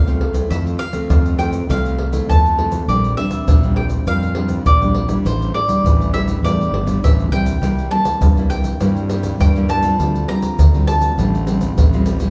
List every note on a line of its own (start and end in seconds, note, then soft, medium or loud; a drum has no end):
0.00 0.42 C2 medium
0.00 0.48 A2 soft
0.00 0.33 F5 medium
0.07 0.32 A3 soft
0.07 0.32 C4 medium
0.07 0.32 F4 medium
0.07 pandeiro soft
0.07 shaker soft
0.21 pandeiro medium
0.33 0.74 A3 medium
0.33 0.74 C4 medium
0.33 0.75 E4 medium
0.33 pandeiro medium
0.33 shaker medium
0.33 surdo soft
0.50 0.76 F2 medium
0.50 1.07 F3 soft
0.50 0.59 E5 medium
0.50 pandeiro medium
0.50 shaker medium
0.50 surdo medium
0.67 pandeiro soft
0.67 shaker soft
0.79 1.35 F5 medium
0.79 pandeiro medium
0.79 shaker medium
0.93 1.34 A3 medium
0.93 1.34 C4 medium
0.93 pandeiro medium
0.93 shaker medium
0.93 surdo soft
1.10 1.60 F2 medium
1.10 1.66 C3 medium
1.10 pandeiro medium
1.10 shaker medium
1.10 surdo medium
1.26 pandeiro soft
1.26 shaker soft
1.38 1.56 A3 medium
1.38 1.57 C4 medium
1.38 1.57 E4 medium
1.38 1.47 G5 medium
1.38 pandeiro medium
1.38 shaker medium
1.53 pandeiro soft
1.53 shaker medium
1.53 surdo soft
1.69 2.20 C2 loud
1.69 2.26 F3 soft
1.69 2.09 A3 medium
1.69 2.09 C4 soft
1.69 2.29 F5 medium
1.69 pandeiro medium
1.69 shaker medium
1.69 surdo soft
1.86 pandeiro soft
1.86 shaker soft
1.99 pandeiro medium
2.12 2.53 A3 medium
2.12 2.53 C4 medium
2.12 2.53 E4 medium
2.12 pandeiro medium
2.12 shaker medium
2.12 surdo soft
2.29 2.79 F2 medium
2.29 2.86 C3 medium
2.29 2.71 A5 medium
2.29 pandeiro medium
2.29 shaker medium
2.29 surdo loud
2.46 pandeiro soft
2.46 shaker soft
2.58 2.75 A3 soft
2.58 2.76 C4 medium
2.58 2.76 E4 medium
2.58 pandeiro medium
2.72 pandeiro medium
2.72 shaker medium
2.72 surdo soft
2.88 3.13 A#1 medium
2.88 3.45 A#2 medium
2.88 3.13 G3 medium
2.88 3.14 C4 medium
2.88 3.14 D4 medium
2.88 3.16 D5 medium
2.88 pandeiro medium
2.88 shaker medium
2.88 surdo medium
3.04 pandeiro soft
3.04 shaker soft
3.17 3.57 G3 medium
3.17 3.57 C4 medium
3.17 3.57 D4 medium
3.17 3.73 E5 medium
3.17 pandeiro medium
3.17 surdo soft
3.31 pandeiro medium
3.31 shaker medium
3.31 surdo soft
3.47 3.98 A#1 medium
3.47 4.04 F3 medium
3.47 pandeiro medium
3.47 shaker medium
3.47 surdo loud
3.63 4.02 G3 soft
3.63 4.03 C4 medium
3.63 4.03 D4 medium
3.63 pandeiro soft
3.63 shaker soft
3.76 3.85 G5 medium
3.76 pandeiro medium
3.90 pandeiro soft
3.90 shaker medium
3.90 surdo soft
4.07 4.57 F2 medium
4.07 4.63 A#2 medium
4.07 4.25 G3 medium
4.07 4.25 C4 soft
4.07 4.25 D4 medium
4.07 4.68 F5 medium
4.07 pandeiro medium
4.07 shaker medium
4.07 surdo medium
4.23 pandeiro soft
4.23 shaker soft
4.35 4.64 G3 medium
4.35 4.64 C4 soft
4.35 4.64 D4 soft
4.35 pandeiro medium
4.49 pandeiro medium
4.49 shaker medium
4.49 surdo soft
4.66 5.16 A#1 medium
4.66 5.23 F3 medium
4.66 5.08 D5 medium
4.66 pandeiro medium
4.66 shaker medium
4.66 surdo medium
4.81 5.06 G3 medium
4.81 5.06 C4 medium
4.81 5.06 D4 medium
4.81 pandeiro soft
4.81 shaker soft
4.95 pandeiro medium
5.08 5.49 G3 medium
5.08 5.49 D4 medium
5.08 5.49 E4 medium
5.08 pandeiro medium
5.08 shaker medium
5.08 surdo soft
5.25 5.50 A1 medium
5.25 5.82 A2 medium
5.25 5.54 C5 medium
5.25 pandeiro medium
5.25 shaker medium
5.25 surdo soft
5.42 pandeiro soft
5.42 shaker soft
5.54 6.10 D5 medium
5.54 pandeiro medium
5.68 6.08 G3 medium
5.68 6.09 D4 medium
5.68 6.09 E4 medium
5.68 pandeiro medium
5.68 shaker medium
5.68 surdo soft
5.84 6.35 A1 medium
5.84 6.41 E3 medium
5.84 pandeiro medium
5.84 shaker medium
5.84 surdo medium
6.01 pandeiro soft
6.01 shaker soft
6.13 6.38 G3 medium
6.13 6.38 D4 medium
6.13 6.39 E4 medium
6.13 6.22 E5 medium
6.13 pandeiro medium
6.28 pandeiro soft
6.28 shaker medium
6.28 surdo soft
6.43 6.68 E2 medium
6.43 7.00 A2 medium
6.43 6.83 G3 medium
6.43 6.84 D4 medium
6.43 6.84 E4 medium
6.43 7.05 D5 medium
6.43 pandeiro medium
6.43 shaker medium
6.43 surdo medium
6.61 pandeiro soft
6.61 shaker soft
6.71 6.99 G1 medium
6.71 pandeiro medium
6.86 7.27 G3 medium
6.86 7.27 D4 medium
6.86 7.27 E4 medium
6.86 pandeiro medium
6.86 shaker medium
6.86 surdo soft
7.02 7.29 A1 medium
7.02 7.60 E3 medium
7.02 7.12 E5 medium
7.02 pandeiro medium
7.02 shaker medium
7.02 surdo loud
7.19 pandeiro soft
7.19 shaker soft
7.31 7.58 C2 medium
7.31 7.57 G3 soft
7.31 7.58 D4 soft
7.31 7.58 E4 soft
7.31 7.88 G5 medium
7.31 pandeiro medium
7.31 shaker medium
7.46 pandeiro medium
7.46 shaker medium
7.46 surdo soft
7.62 7.87 C2 medium
7.62 8.19 C3 medium
7.62 7.88 G3 soft
7.62 7.88 A#3 soft
7.62 7.88 E4 medium
7.62 pandeiro medium
7.62 shaker medium
7.62 surdo soft
7.79 pandeiro soft
7.79 shaker soft
7.91 8.19 G3 medium
7.91 8.20 A#3 medium
7.91 8.20 E4 medium
7.91 8.49 A5 medium
7.91 pandeiro medium
8.05 pandeiro medium
8.05 shaker medium
8.05 surdo soft
8.21 8.72 C2 medium
8.21 8.78 G2 medium
8.21 pandeiro medium
8.21 shaker medium
8.21 surdo medium
8.37 8.77 G3 medium
8.37 8.77 A#3 medium
8.37 8.77 E4 medium
8.37 pandeiro soft
8.37 shaker soft
8.50 9.40 G5 medium
8.50 pandeiro medium
8.50 shaker medium
8.64 pandeiro soft
8.64 shaker medium
8.64 surdo soft
8.81 9.31 G2 loud
8.81 9.38 C3 medium
8.81 9.06 G3 medium
8.81 9.06 A#3 medium
8.81 9.06 E4 medium
8.81 pandeiro medium
8.81 shaker medium
8.81 surdo medium
8.96 pandeiro soft
8.96 shaker soft
9.10 9.50 G3 soft
9.10 9.50 A#3 medium
9.10 9.50 E4 medium
9.10 pandeiro medium
9.10 shaker medium
9.23 pandeiro medium
9.23 shaker medium
9.23 surdo soft
9.40 9.90 G2 medium
9.40 9.97 G2 medium
9.40 9.49 G5 medium
9.40 pandeiro medium
9.40 shaker medium
9.40 surdo medium
9.56 9.81 G3 medium
9.56 9.81 A#3 medium
9.56 9.81 E4 medium
9.56 pandeiro soft
9.56 shaker soft
9.69 10.28 A5 loud
9.69 pandeiro medium
9.69 shaker medium
9.83 10.24 G3 medium
9.83 10.24 C4 medium
9.83 10.24 F4 medium
9.83 pandeiro soft
9.83 shaker medium
9.83 surdo soft
9.99 10.25 D2 medium
9.99 10.56 D3 medium
9.99 pandeiro medium
9.99 shaker medium
9.99 surdo soft
10.15 pandeiro soft
10.15 shaker soft
10.28 10.57 G3 medium
10.28 10.57 C4 medium
10.28 10.57 F4 medium
10.28 10.84 A#5 medium
10.28 pandeiro medium
10.28 surdo soft
10.42 pandeiro medium
10.42 shaker medium
10.42 surdo soft
10.59 11.09 D2 medium
10.59 11.15 A2 medium
10.59 pandeiro medium
10.59 shaker medium
10.59 surdo loud
10.74 11.14 G3 medium
10.74 11.14 C4 soft
10.74 11.14 F4 medium
10.74 pandeiro soft
10.74 shaker soft
10.87 12.03 A5 medium
10.87 pandeiro medium
10.87 shaker medium
11.01 pandeiro medium
11.01 shaker medium
11.01 surdo soft
11.18 11.68 A1 loud
11.18 11.75 D3 soft
11.18 11.43 G3 medium
11.18 11.43 C4 soft
11.18 11.44 F4 medium
11.18 pandeiro medium
11.18 shaker medium
11.18 surdo medium
11.35 pandeiro soft
11.35 shaker soft
11.47 11.87 G3 medium
11.47 11.87 C4 soft
11.47 11.88 F4 soft
11.47 pandeiro medium
11.47 shaker medium
11.61 pandeiro medium
11.61 shaker medium
11.61 surdo soft
11.77 12.27 A1 medium
11.77 12.30 A2 medium
11.77 pandeiro medium
11.77 shaker medium
11.77 surdo medium
11.93 12.18 G3 medium
11.93 12.18 C4 medium
11.93 12.18 F4 medium
11.93 pandeiro soft
11.93 shaker soft
12.06 pandeiro medium
12.06 shaker medium
12.20 12.30 G3 medium
12.20 12.30 C#4 medium
12.20 12.30 E4 medium
12.20 pandeiro medium
12.20 shaker medium
12.20 surdo soft